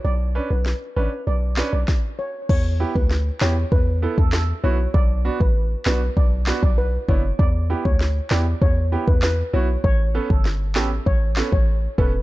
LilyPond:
<<
  \new Staff \with { instrumentName = "Steel pan" } { \time 4/4 \key e \dorian \tempo 4 = 98 d''16 r8 b'8 r16 b'8 d''16 r8 d''16 r8 cis''16 r16 | cis''16 r8 b'8 r16 cis''8 b'16 r8 a'16 a'16 r16 cis''16 r16 | d''16 r8 b'8 r16 b'8 d''16 r8 d''16 b'16 r16 cis''16 r16 | d''16 r8 cis''8 r16 d''8 cis''16 r8 b'16 b'16 r16 cis''16 r16 |
cis''16 r8 a'8 r16 a'8 cis''16 r8 cis''16 r8 b'16 r16 | }
  \new Staff \with { instrumentName = "Grand piano" } { \time 4/4 \key e \dorian r8 <cis' d' b'>8 r8 <cis' d' b'>8 r8 <cis' d' b'>8 r4 | r8 <b e' g'>8 r8 <b e' g'>8 r8 <b e' a'>8 r8 <b e' fis'>8 | r8 <b d' fis'>8 r8 <b d' fis'>8 r8 <b d' fis'>8 r8 <b d' e'>8 | r8 <b e' g'>8 r8 <b e' g'>8 r8 <b e' g'>8 r8 <b e' fis'>8 |
r8 <b cis' a'>8 r8 <b cis' g'>8 r8 <b cis' a'>8 r8 <b cis' a'>8 | }
  \new Staff \with { instrumentName = "808-style bass" } { \clef bass \time 4/4 \key e \dorian b,,8. b,,8 r16 a,,16 r16 b,,8. b,,16 r4 | e,8. d,8. e,8 e,8. e,8. b,,8 | b,,8. a,,8. b,,8 b,,8. b,,8. fis,,8 | e,8. d,8. e,8 e,8. e,8. b,,8 |
a,,8. g,,8. a,,8 a,,8. a,,8. e,,8 | }
  \new DrumStaff \with { instrumentName = "Drums" } \drummode { \time 4/4 r4 sn4 r8 <hc sn>8 <bd sn>4 | <cymc bd>8. bd16 sn8 <hc sn>8 bd8. bd16 <hc sn>4 | bd8. bd16 r8 <hc sn>8 bd8 <hc sn>16 bd16 r8 bd8 | bd8. bd16 sn8 <hc sn>8 bd8. bd16 <hc sn>4 |
bd8. bd16 sn8 <hc sn>8 bd8 <hc sn>16 bd16 r8 bd8 | }
>>